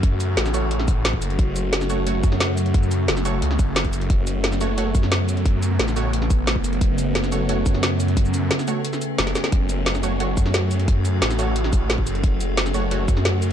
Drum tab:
HH |x-x-x-x-x-x-x-xx|x-x-x-x-x-x-x-xx|x-x-x-x-x-x-xxxx|x-x-x-x-x-x-x-xx|
SH |--x--xx---x---x-|--x--xx---x---x-|-xx--xx---x---x-|--x--xx---x---x-|
SD |----oo---o--o---|----oo-----oo---|----oo---o--o---|----oo-----oo---|
BD |o---------o--o--|o---------o-----|o---------o--o--|o---------o-----|

HH |x-x-x-x-x-x-x-xx|x-x-x-x-x-x-x-xx|x-x-x-x-x-x-xxxx|x-x-x-x-x-x-x-xx|
SH |--x--xx---x---x-|--x--xx---x---x-|-xx--xx--xx---x-|--x--xx---x---x-|
SD |----oo---o--o---|----oo-----oo---|----oo---o--oooo|----oo-----oo---|
BD |o---------o--o--|o---------o-----|o---------------|o---------o-----|

HH |x-x-x-x-x-x-x-xx|x-x-x-x-x-x-x-x-|
SH |--x--xx---x---x-|--x--xx---x---x-|
SD |----oo---o--o---|----oo-----oo---|
BD |o---------o--o--|o---------o-----|